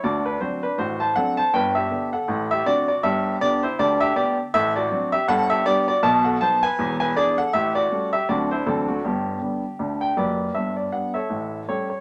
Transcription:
0.03 0.36 D2 medium
0.03 0.35 D3 medium
0.03 0.24 F#4 medium
0.03 0.22 D5 medium
0.25 0.40 D4 medium
0.25 0.39 B4 medium
0.41 0.61 F#3 soft
0.41 0.62 C4 soft
0.41 0.62 D4 medium
0.41 0.61 F#4 medium
0.41 0.59 C5 medium
0.63 0.78 D4 medium
0.63 0.76 B4 medium
0.78 1.10 A1 medium
0.78 1.10 A2 medium
0.78 0.99 F#4 medium
0.78 0.97 C5 medium
1.00 1.15 C5 medium
1.00 1.13 A5 medium
1.16 1.37 F#3 soft
1.16 1.37 C4 soft
1.16 1.37 D4 soft
1.16 1.37 A4 medium
1.16 1.34 F#5 loud
1.37 1.53 C5 medium
1.37 1.51 A5 loud
1.53 1.86 G1 medium
1.53 1.85 G2 medium
1.53 1.75 B4 medium
1.53 1.72 G5 medium
1.75 2.11 G4 medium
1.75 2.07 E5 medium
1.91 2.11 D3 soft
1.91 2.12 B3 soft
1.91 2.12 D4 soft
2.13 2.48 A4 medium
2.13 2.45 F#5 medium
2.28 2.60 A1 medium
2.28 2.60 A2 medium
2.51 2.66 G4 medium
2.51 2.64 E5 medium
2.66 2.87 D3 medium
2.66 2.87 C4 soft
2.66 2.87 D4 medium
2.66 2.87 F#4 medium
2.66 2.85 D5 loud
2.88 3.03 F#4 medium
2.88 3.01 D5 medium
3.03 3.35 G1 medium
3.03 3.35 G2 medium
3.03 3.39 G4 medium
3.03 3.35 E5 loud
3.41 3.62 D3 medium
3.41 3.62 B3 medium
3.41 3.62 D4 soft
3.41 3.62 G4 medium
3.41 3.60 D5 loud
3.63 3.78 E4 medium
3.63 3.76 C5 medium
3.79 4.11 D2 medium
3.79 4.11 D3 medium
3.79 4.00 G4 medium
3.79 3.97 D5 loud
4.00 4.15 G4 medium
4.00 4.14 E5 loud
4.16 4.37 D3 soft
4.16 4.37 B3 medium
4.16 4.37 D4 medium
4.16 4.37 G4 medium
4.16 4.35 D5 medium
4.54 4.86 A1 medium
4.54 4.86 A2 medium
4.54 4.75 A4 medium
4.54 4.72 E5 loud
4.76 5.11 F#4 medium
4.76 5.07 D5 medium
4.92 5.12 F#3 soft
4.92 5.12 C4 medium
4.92 5.13 D4 soft
5.12 5.28 G4 medium
5.12 5.26 E5 loud
5.28 5.60 G1 medium
5.28 5.60 G2 medium
5.28 5.49 A4 medium
5.28 5.47 F#5 loud
5.50 5.65 G4 medium
5.50 5.63 E5 loud
5.65 5.86 G3 medium
5.65 5.87 B3 medium
5.65 5.87 D4 medium
5.65 5.87 G4 medium
5.65 5.84 D5 loud
5.88 6.03 F#4 medium
5.88 6.01 D5 loud
6.03 6.35 B1 medium
6.03 6.35 B2 medium
6.03 6.24 D#5 medium
6.03 6.22 A5 loud
6.25 6.40 A4 medium
6.25 6.38 F#5 medium
6.41 6.62 F#3 soft
6.41 6.62 B3 soft
6.41 6.62 D#4 soft
6.41 6.62 C5 medium
6.41 6.59 A5 loud
6.63 6.98 B4 medium
6.63 6.95 G#5 loud
6.79 7.10 E1 medium
6.79 7.11 E2 medium
7.00 7.16 B4 medium
7.00 7.13 G#5 loud
7.16 7.37 E3 medium
7.16 7.37 B3 medium
7.16 7.37 D4 medium
7.16 7.37 G#4 medium
7.16 7.35 D5 loud
7.38 7.53 A4 medium
7.38 7.51 F#5 loud
7.53 7.85 A1 medium
7.53 7.85 A2 medium
7.53 7.75 G4 medium
7.53 7.72 E5 loud
7.75 8.11 F#4 medium
7.75 8.07 D5 medium
7.92 8.12 G3 soft
7.92 8.12 A3 soft
7.92 8.12 C#4 soft
8.13 8.28 G4 medium
8.13 8.26 E5 medium
8.29 8.61 D2 medium
8.29 8.61 D3 medium
8.29 8.50 F#3 soft
8.29 8.50 A3 soft
8.29 8.50 C4 soft
8.29 8.50 F#4 medium
8.29 8.47 D5 medium
8.51 8.66 E4 medium
8.51 8.64 C5 medium
8.66 8.98 D2 medium
8.66 8.98 D3 medium
8.66 8.87 E3 soft
8.66 8.88 F#3 soft
8.66 8.87 C4 medium
8.66 8.85 A4 medium
8.88 9.04 A3 medium
8.88 9.01 F#4 medium
9.04 9.36 G1 medium
9.04 9.36 G2 medium
9.04 9.41 B3 soft
9.04 10.17 G4 medium
9.42 9.62 D3 soft
9.42 9.63 G3 soft
9.42 9.63 B3 soft
9.79 10.11 D2 medium
9.79 10.11 D3 medium
10.01 10.14 G5 medium
10.17 10.47 F#1 medium
10.17 10.47 F#2 medium
10.17 10.53 G4 soft
10.17 10.53 B4 medium
10.17 10.49 D5 medium
10.54 10.87 G1 medium
10.54 10.87 G2 medium
10.54 10.73 E5 medium
10.76 10.90 D5 medium
10.92 11.13 G3 soft
10.92 11.13 B3 soft
10.92 11.14 D4 soft
10.92 11.11 F#5 medium
11.14 11.64 A4 medium
11.14 11.64 C#5 medium
11.14 11.59 E5 medium
11.30 11.62 A1 soft
11.30 11.62 A2 medium
11.68 11.89 G3 soft
11.68 11.89 A3 soft
11.68 11.89 C#4 soft
11.68 11.89 G4 soft
11.68 11.89 A4 medium
11.68 11.87 C#5 medium
11.90 12.01 C#5 medium

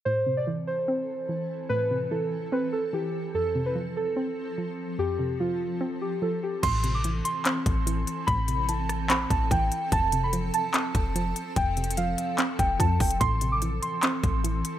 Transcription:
0.05 1.09 A2 medium
0.05 3.31 E3 medium
0.05 6.59 C4 medium
0.05 6.59 A4 medium
0.05 0.35 C5 loud
0.26 1.29 C3 medium
0.37 0.46 D5 medium
0.47 1.28 E3 medium
0.67 1.66 C5 medium
0.88 1.91 C4 medium
1.29 2.10 E3 medium
1.69 2.73 A2 loud
1.69 2.08 B4 loud
1.91 2.94 C3 medium
2.11 2.92 E3 medium
2.11 2.50 A4 medium
2.52 3.34 C4 loud
2.52 2.71 B4 medium
2.73 2.91 A4 medium
2.93 3.34 E3 medium
2.93 3.32 G4 medium
3.34 4.37 F2 medium
3.34 6.60 F3 medium
3.34 3.64 A4 loud
3.55 4.58 C3 medium
3.66 3.75 B4 medium
3.75 4.57 F3 medium
3.97 4.95 A4 medium
4.16 5.19 C4 medium
4.58 5.39 F3 medium
4.99 6.01 F2 loud
4.99 5.38 G4 medium
5.19 6.22 C3 medium
5.40 6.21 F3 medium
5.40 5.79 F4 medium
5.81 6.63 C4 loud
6.02 6.20 G4 medium
6.22 6.63 F3 medium
6.22 6.40 A4 medium
6.43 6.61 G4 medium
6.63 7.22 A1 loud
6.63 7.66 A2 medium
6.63 9.89 E3 medium
6.63 9.89 C4 medium
6.63 14.79 A4 medium
6.63 6.92 C6 loud
6.63 kick loud
6.63 closed hi-hat medium
6.63 crash loud
6.84 7.87 C3 medium
6.84 closed hi-hat medium
6.95 7.03 D6 medium
7.04 7.85 E3 medium
7.04 closed hi-hat medium
7.25 8.24 C6 medium
7.25 closed hi-hat medium
7.45 8.48 C4 loud
7.45 clap loud
7.45 closed hi-hat medium
7.66 8.06 A1 loud
7.66 kick loud
7.66 closed hi-hat medium
7.86 8.68 E3 medium
7.86 closed hi-hat medium
8.07 closed hi-hat medium
8.27 9.26 A1 loud
8.27 9.30 A2 loud
8.27 8.66 B5 loud
8.27 kick loud
8.27 closed hi-hat medium
8.48 9.51 C3 medium
8.48 closed hi-hat medium
8.69 9.49 E3 medium
8.69 9.07 A5 medium
8.69 closed hi-hat medium
8.89 cross-stick medium
8.89 closed hi-hat medium
9.10 9.92 C4 loud
9.10 9.28 B5 medium
9.10 clap loud
9.10 closed hi-hat medium
9.30 9.50 A1 loud
9.30 9.48 A5 medium
9.30 kick loud
9.30 closed hi-hat medium
9.51 9.71 A1 loud
9.51 9.92 E3 medium
9.51 9.90 G5 medium
9.51 kick loud
9.51 closed hi-hat medium
9.72 closed hi-hat medium
9.92 10.51 F1 loud
9.92 10.95 F2 loud
9.92 13.18 F3 medium
9.92 13.18 C4 medium
9.92 10.21 A5 loud
9.92 kick loud
9.92 closed hi-hat medium
10.12 11.15 C3 medium
10.12 closed hi-hat medium
10.24 10.32 B5 medium
10.33 11.14 F3 medium
10.33 closed hi-hat medium
10.54 11.53 A5 medium
10.54 closed hi-hat medium
10.74 11.77 C4 loud
10.74 clap loud
10.74 closed hi-hat medium
10.95 11.34 F1 loud
10.95 kick loud
10.95 closed hi-hat medium
11.15 11.97 F3 medium
11.15 closed hi-hat medium
11.36 closed hi-hat medium
11.56 12.16 F1 loud
11.56 12.59 F2 loud
11.56 11.95 G5 loud
11.56 kick loud
11.56 closed hi-hat medium
11.77 12.80 C3 medium
11.77 closed hi-hat medium
11.84 closed hi-hat medium
11.91 closed hi-hat medium
11.97 12.78 F3 medium
11.97 12.36 F5 medium
11.97 closed hi-hat medium
12.18 closed hi-hat medium
12.38 13.21 C4 loud
12.38 clap loud
12.38 closed hi-hat medium
12.59 12.79 F1 loud
12.59 12.77 G5 medium
12.59 kick medium
12.59 closed hi-hat medium
12.80 12.99 F2 loud
12.80 13.21 F3 medium
12.80 12.98 A5 medium
12.80 kick loud
12.80 closed hi-hat medium
13.00 13.20 F1 loud
13.00 13.19 G5 medium
13.00 kick loud
13.00 closed hi-hat soft
13.00 open hi-hat medium
13.11 closed hi-hat medium
13.20 13.80 A1 loud
13.20 14.24 A2 loud
13.20 14.79 E3 medium
13.20 14.79 C4 medium
13.20 13.50 C6 loud
13.20 kick loud
13.20 closed hi-hat medium
13.41 14.44 C3 medium
13.41 closed hi-hat medium
13.52 13.61 D6 medium
13.62 14.43 E3 medium
13.62 closed hi-hat medium
13.82 14.79 C6 medium
13.82 closed hi-hat medium
14.03 14.79 C4 loud
14.03 clap loud
14.03 closed hi-hat medium
14.24 14.63 A1 loud
14.24 kick loud
14.24 closed hi-hat medium
14.44 14.79 E3 medium
14.44 closed hi-hat medium
14.65 closed hi-hat medium

